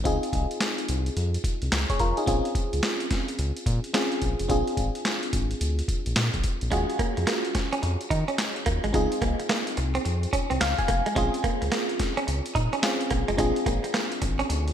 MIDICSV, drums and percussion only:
0, 0, Header, 1, 2, 480
1, 0, Start_track
1, 0, Key_signature, -5, "minor"
1, 0, Tempo, 555556
1, 44, Time_signature, 4, 2, 24, 8
1, 12729, End_track
2, 0, Start_track
2, 0, Title_t, "Drums"
2, 45, Note_on_c, 9, 36, 110
2, 46, Note_on_c, 9, 42, 76
2, 132, Note_off_c, 9, 36, 0
2, 132, Note_off_c, 9, 42, 0
2, 200, Note_on_c, 9, 42, 52
2, 284, Note_on_c, 9, 36, 92
2, 286, Note_off_c, 9, 42, 0
2, 286, Note_on_c, 9, 42, 73
2, 370, Note_off_c, 9, 36, 0
2, 372, Note_off_c, 9, 42, 0
2, 440, Note_on_c, 9, 42, 49
2, 523, Note_on_c, 9, 38, 106
2, 525, Note_off_c, 9, 42, 0
2, 525, Note_on_c, 9, 42, 79
2, 528, Note_on_c, 9, 39, 82
2, 609, Note_off_c, 9, 38, 0
2, 611, Note_off_c, 9, 42, 0
2, 615, Note_off_c, 9, 39, 0
2, 677, Note_on_c, 9, 42, 53
2, 764, Note_off_c, 9, 42, 0
2, 764, Note_on_c, 9, 42, 82
2, 851, Note_off_c, 9, 42, 0
2, 918, Note_on_c, 9, 42, 49
2, 1005, Note_off_c, 9, 42, 0
2, 1008, Note_on_c, 9, 42, 83
2, 1094, Note_off_c, 9, 42, 0
2, 1161, Note_on_c, 9, 42, 55
2, 1244, Note_on_c, 9, 36, 96
2, 1248, Note_off_c, 9, 42, 0
2, 1248, Note_on_c, 9, 42, 71
2, 1330, Note_off_c, 9, 36, 0
2, 1334, Note_off_c, 9, 42, 0
2, 1397, Note_on_c, 9, 42, 49
2, 1483, Note_off_c, 9, 42, 0
2, 1485, Note_on_c, 9, 42, 87
2, 1486, Note_on_c, 9, 38, 117
2, 1491, Note_on_c, 9, 39, 91
2, 1572, Note_off_c, 9, 38, 0
2, 1572, Note_off_c, 9, 42, 0
2, 1577, Note_off_c, 9, 39, 0
2, 1638, Note_on_c, 9, 42, 47
2, 1639, Note_on_c, 9, 36, 90
2, 1723, Note_off_c, 9, 42, 0
2, 1723, Note_on_c, 9, 42, 66
2, 1726, Note_off_c, 9, 36, 0
2, 1727, Note_on_c, 9, 36, 83
2, 1810, Note_off_c, 9, 42, 0
2, 1813, Note_off_c, 9, 36, 0
2, 1876, Note_on_c, 9, 42, 49
2, 1963, Note_off_c, 9, 42, 0
2, 1965, Note_on_c, 9, 36, 114
2, 1965, Note_on_c, 9, 42, 74
2, 2051, Note_off_c, 9, 36, 0
2, 2051, Note_off_c, 9, 42, 0
2, 2119, Note_on_c, 9, 42, 50
2, 2203, Note_on_c, 9, 36, 92
2, 2205, Note_off_c, 9, 42, 0
2, 2206, Note_on_c, 9, 42, 73
2, 2290, Note_off_c, 9, 36, 0
2, 2292, Note_off_c, 9, 42, 0
2, 2359, Note_on_c, 9, 42, 52
2, 2443, Note_on_c, 9, 38, 107
2, 2445, Note_off_c, 9, 42, 0
2, 2445, Note_on_c, 9, 42, 73
2, 2449, Note_on_c, 9, 39, 80
2, 2530, Note_off_c, 9, 38, 0
2, 2531, Note_off_c, 9, 42, 0
2, 2535, Note_off_c, 9, 39, 0
2, 2595, Note_on_c, 9, 42, 50
2, 2682, Note_off_c, 9, 42, 0
2, 2683, Note_on_c, 9, 42, 89
2, 2684, Note_on_c, 9, 38, 65
2, 2686, Note_on_c, 9, 36, 93
2, 2770, Note_off_c, 9, 42, 0
2, 2771, Note_off_c, 9, 38, 0
2, 2772, Note_off_c, 9, 36, 0
2, 2837, Note_on_c, 9, 42, 52
2, 2924, Note_off_c, 9, 42, 0
2, 2926, Note_on_c, 9, 42, 90
2, 3012, Note_off_c, 9, 42, 0
2, 3080, Note_on_c, 9, 42, 54
2, 3164, Note_on_c, 9, 36, 93
2, 3166, Note_off_c, 9, 42, 0
2, 3166, Note_on_c, 9, 42, 72
2, 3250, Note_off_c, 9, 36, 0
2, 3253, Note_off_c, 9, 42, 0
2, 3318, Note_on_c, 9, 42, 50
2, 3404, Note_off_c, 9, 42, 0
2, 3405, Note_on_c, 9, 38, 113
2, 3405, Note_on_c, 9, 42, 83
2, 3411, Note_on_c, 9, 39, 90
2, 3491, Note_off_c, 9, 42, 0
2, 3492, Note_off_c, 9, 38, 0
2, 3497, Note_off_c, 9, 39, 0
2, 3558, Note_on_c, 9, 42, 44
2, 3642, Note_off_c, 9, 42, 0
2, 3642, Note_on_c, 9, 42, 67
2, 3646, Note_on_c, 9, 36, 77
2, 3729, Note_off_c, 9, 42, 0
2, 3733, Note_off_c, 9, 36, 0
2, 3797, Note_on_c, 9, 42, 54
2, 3883, Note_off_c, 9, 42, 0
2, 3885, Note_on_c, 9, 36, 110
2, 3885, Note_on_c, 9, 42, 74
2, 3971, Note_off_c, 9, 36, 0
2, 3971, Note_off_c, 9, 42, 0
2, 4039, Note_on_c, 9, 42, 50
2, 4123, Note_on_c, 9, 36, 87
2, 4124, Note_off_c, 9, 42, 0
2, 4124, Note_on_c, 9, 42, 71
2, 4209, Note_off_c, 9, 36, 0
2, 4211, Note_off_c, 9, 42, 0
2, 4278, Note_on_c, 9, 42, 51
2, 4363, Note_on_c, 9, 38, 104
2, 4364, Note_off_c, 9, 42, 0
2, 4365, Note_on_c, 9, 42, 72
2, 4369, Note_on_c, 9, 39, 83
2, 4450, Note_off_c, 9, 38, 0
2, 4451, Note_off_c, 9, 42, 0
2, 4455, Note_off_c, 9, 39, 0
2, 4518, Note_on_c, 9, 42, 52
2, 4604, Note_off_c, 9, 42, 0
2, 4605, Note_on_c, 9, 42, 84
2, 4606, Note_on_c, 9, 36, 90
2, 4691, Note_off_c, 9, 42, 0
2, 4692, Note_off_c, 9, 36, 0
2, 4758, Note_on_c, 9, 42, 51
2, 4844, Note_off_c, 9, 42, 0
2, 4847, Note_on_c, 9, 42, 82
2, 4933, Note_off_c, 9, 42, 0
2, 5000, Note_on_c, 9, 42, 59
2, 5083, Note_on_c, 9, 36, 88
2, 5085, Note_off_c, 9, 42, 0
2, 5085, Note_on_c, 9, 42, 71
2, 5169, Note_off_c, 9, 36, 0
2, 5172, Note_off_c, 9, 42, 0
2, 5236, Note_on_c, 9, 42, 48
2, 5321, Note_off_c, 9, 42, 0
2, 5321, Note_on_c, 9, 42, 83
2, 5322, Note_on_c, 9, 38, 118
2, 5327, Note_on_c, 9, 39, 97
2, 5408, Note_off_c, 9, 38, 0
2, 5408, Note_off_c, 9, 42, 0
2, 5414, Note_off_c, 9, 39, 0
2, 5475, Note_on_c, 9, 42, 42
2, 5478, Note_on_c, 9, 36, 86
2, 5560, Note_off_c, 9, 42, 0
2, 5560, Note_on_c, 9, 42, 70
2, 5564, Note_off_c, 9, 36, 0
2, 5565, Note_on_c, 9, 36, 83
2, 5647, Note_off_c, 9, 42, 0
2, 5652, Note_off_c, 9, 36, 0
2, 5714, Note_on_c, 9, 42, 48
2, 5800, Note_off_c, 9, 42, 0
2, 5802, Note_on_c, 9, 42, 81
2, 5803, Note_on_c, 9, 36, 109
2, 5889, Note_off_c, 9, 42, 0
2, 5890, Note_off_c, 9, 36, 0
2, 5958, Note_on_c, 9, 42, 51
2, 6042, Note_on_c, 9, 36, 92
2, 6043, Note_off_c, 9, 42, 0
2, 6043, Note_on_c, 9, 42, 67
2, 6128, Note_off_c, 9, 36, 0
2, 6129, Note_off_c, 9, 42, 0
2, 6196, Note_on_c, 9, 42, 49
2, 6281, Note_on_c, 9, 38, 106
2, 6282, Note_off_c, 9, 42, 0
2, 6283, Note_on_c, 9, 42, 81
2, 6286, Note_on_c, 9, 39, 77
2, 6368, Note_off_c, 9, 38, 0
2, 6369, Note_off_c, 9, 42, 0
2, 6373, Note_off_c, 9, 39, 0
2, 6434, Note_on_c, 9, 42, 52
2, 6520, Note_off_c, 9, 42, 0
2, 6520, Note_on_c, 9, 42, 84
2, 6521, Note_on_c, 9, 38, 65
2, 6524, Note_on_c, 9, 36, 87
2, 6607, Note_off_c, 9, 42, 0
2, 6608, Note_off_c, 9, 38, 0
2, 6610, Note_off_c, 9, 36, 0
2, 6675, Note_on_c, 9, 42, 52
2, 6762, Note_off_c, 9, 42, 0
2, 6764, Note_on_c, 9, 42, 80
2, 6850, Note_off_c, 9, 42, 0
2, 6918, Note_on_c, 9, 42, 53
2, 7003, Note_on_c, 9, 36, 93
2, 7004, Note_off_c, 9, 42, 0
2, 7007, Note_on_c, 9, 42, 71
2, 7090, Note_off_c, 9, 36, 0
2, 7093, Note_off_c, 9, 42, 0
2, 7157, Note_on_c, 9, 42, 49
2, 7243, Note_off_c, 9, 42, 0
2, 7244, Note_on_c, 9, 38, 119
2, 7244, Note_on_c, 9, 42, 93
2, 7249, Note_on_c, 9, 39, 97
2, 7330, Note_off_c, 9, 38, 0
2, 7330, Note_off_c, 9, 42, 0
2, 7336, Note_off_c, 9, 39, 0
2, 7397, Note_on_c, 9, 42, 41
2, 7482, Note_off_c, 9, 42, 0
2, 7482, Note_on_c, 9, 42, 76
2, 7486, Note_on_c, 9, 36, 87
2, 7568, Note_off_c, 9, 42, 0
2, 7572, Note_off_c, 9, 36, 0
2, 7636, Note_on_c, 9, 42, 48
2, 7723, Note_off_c, 9, 42, 0
2, 7724, Note_on_c, 9, 36, 114
2, 7724, Note_on_c, 9, 42, 73
2, 7811, Note_off_c, 9, 36, 0
2, 7811, Note_off_c, 9, 42, 0
2, 7878, Note_on_c, 9, 42, 53
2, 7963, Note_on_c, 9, 36, 94
2, 7964, Note_off_c, 9, 42, 0
2, 7964, Note_on_c, 9, 42, 71
2, 8049, Note_off_c, 9, 36, 0
2, 8050, Note_off_c, 9, 42, 0
2, 8118, Note_on_c, 9, 42, 48
2, 8203, Note_on_c, 9, 38, 106
2, 8204, Note_off_c, 9, 42, 0
2, 8204, Note_on_c, 9, 42, 80
2, 8208, Note_on_c, 9, 39, 84
2, 8289, Note_off_c, 9, 38, 0
2, 8291, Note_off_c, 9, 42, 0
2, 8294, Note_off_c, 9, 39, 0
2, 8355, Note_on_c, 9, 42, 55
2, 8441, Note_off_c, 9, 42, 0
2, 8442, Note_on_c, 9, 42, 85
2, 8528, Note_off_c, 9, 42, 0
2, 8597, Note_on_c, 9, 42, 49
2, 8683, Note_off_c, 9, 42, 0
2, 8687, Note_on_c, 9, 42, 86
2, 8773, Note_off_c, 9, 42, 0
2, 8841, Note_on_c, 9, 42, 53
2, 8924, Note_on_c, 9, 36, 88
2, 8927, Note_off_c, 9, 42, 0
2, 8928, Note_on_c, 9, 42, 75
2, 9011, Note_off_c, 9, 36, 0
2, 9015, Note_off_c, 9, 42, 0
2, 9078, Note_on_c, 9, 42, 52
2, 9165, Note_off_c, 9, 42, 0
2, 9166, Note_on_c, 9, 38, 118
2, 9166, Note_on_c, 9, 42, 91
2, 9171, Note_on_c, 9, 39, 97
2, 9252, Note_off_c, 9, 38, 0
2, 9252, Note_off_c, 9, 42, 0
2, 9258, Note_off_c, 9, 39, 0
2, 9318, Note_on_c, 9, 42, 43
2, 9320, Note_on_c, 9, 36, 90
2, 9403, Note_off_c, 9, 42, 0
2, 9403, Note_on_c, 9, 42, 73
2, 9406, Note_off_c, 9, 36, 0
2, 9407, Note_on_c, 9, 36, 83
2, 9489, Note_off_c, 9, 42, 0
2, 9494, Note_off_c, 9, 36, 0
2, 9557, Note_on_c, 9, 42, 52
2, 9644, Note_off_c, 9, 42, 0
2, 9645, Note_on_c, 9, 36, 111
2, 9645, Note_on_c, 9, 42, 77
2, 9731, Note_off_c, 9, 36, 0
2, 9731, Note_off_c, 9, 42, 0
2, 9798, Note_on_c, 9, 42, 51
2, 9883, Note_on_c, 9, 36, 97
2, 9885, Note_off_c, 9, 42, 0
2, 9885, Note_on_c, 9, 42, 66
2, 9969, Note_off_c, 9, 36, 0
2, 9971, Note_off_c, 9, 42, 0
2, 10038, Note_on_c, 9, 42, 53
2, 10123, Note_on_c, 9, 38, 95
2, 10124, Note_off_c, 9, 42, 0
2, 10125, Note_on_c, 9, 42, 78
2, 10129, Note_on_c, 9, 39, 83
2, 10210, Note_off_c, 9, 38, 0
2, 10211, Note_off_c, 9, 42, 0
2, 10215, Note_off_c, 9, 39, 0
2, 10276, Note_on_c, 9, 42, 50
2, 10362, Note_off_c, 9, 42, 0
2, 10363, Note_on_c, 9, 42, 93
2, 10364, Note_on_c, 9, 38, 66
2, 10366, Note_on_c, 9, 36, 85
2, 10450, Note_off_c, 9, 38, 0
2, 10450, Note_off_c, 9, 42, 0
2, 10452, Note_off_c, 9, 36, 0
2, 10517, Note_on_c, 9, 42, 50
2, 10604, Note_off_c, 9, 42, 0
2, 10609, Note_on_c, 9, 42, 89
2, 10695, Note_off_c, 9, 42, 0
2, 10762, Note_on_c, 9, 42, 55
2, 10845, Note_on_c, 9, 36, 88
2, 10849, Note_off_c, 9, 42, 0
2, 10849, Note_on_c, 9, 42, 68
2, 10931, Note_off_c, 9, 36, 0
2, 10936, Note_off_c, 9, 42, 0
2, 10998, Note_on_c, 9, 42, 48
2, 11084, Note_off_c, 9, 42, 0
2, 11084, Note_on_c, 9, 42, 82
2, 11085, Note_on_c, 9, 38, 125
2, 11090, Note_on_c, 9, 39, 97
2, 11171, Note_off_c, 9, 38, 0
2, 11171, Note_off_c, 9, 42, 0
2, 11176, Note_off_c, 9, 39, 0
2, 11238, Note_on_c, 9, 42, 44
2, 11322, Note_off_c, 9, 42, 0
2, 11322, Note_on_c, 9, 42, 74
2, 11327, Note_on_c, 9, 36, 84
2, 11409, Note_off_c, 9, 42, 0
2, 11413, Note_off_c, 9, 36, 0
2, 11477, Note_on_c, 9, 42, 47
2, 11563, Note_off_c, 9, 42, 0
2, 11565, Note_on_c, 9, 36, 105
2, 11565, Note_on_c, 9, 42, 75
2, 11651, Note_off_c, 9, 36, 0
2, 11651, Note_off_c, 9, 42, 0
2, 11718, Note_on_c, 9, 42, 53
2, 11803, Note_on_c, 9, 36, 86
2, 11805, Note_off_c, 9, 42, 0
2, 11806, Note_on_c, 9, 42, 70
2, 11890, Note_off_c, 9, 36, 0
2, 11892, Note_off_c, 9, 42, 0
2, 11959, Note_on_c, 9, 42, 48
2, 12044, Note_on_c, 9, 38, 97
2, 12045, Note_off_c, 9, 42, 0
2, 12046, Note_on_c, 9, 42, 74
2, 12049, Note_on_c, 9, 39, 81
2, 12130, Note_off_c, 9, 38, 0
2, 12132, Note_off_c, 9, 42, 0
2, 12136, Note_off_c, 9, 39, 0
2, 12197, Note_on_c, 9, 42, 50
2, 12283, Note_off_c, 9, 42, 0
2, 12283, Note_on_c, 9, 42, 90
2, 12286, Note_on_c, 9, 36, 90
2, 12369, Note_off_c, 9, 42, 0
2, 12372, Note_off_c, 9, 36, 0
2, 12437, Note_on_c, 9, 42, 50
2, 12524, Note_off_c, 9, 42, 0
2, 12527, Note_on_c, 9, 42, 88
2, 12613, Note_off_c, 9, 42, 0
2, 12680, Note_on_c, 9, 42, 54
2, 12729, Note_off_c, 9, 42, 0
2, 12729, End_track
0, 0, End_of_file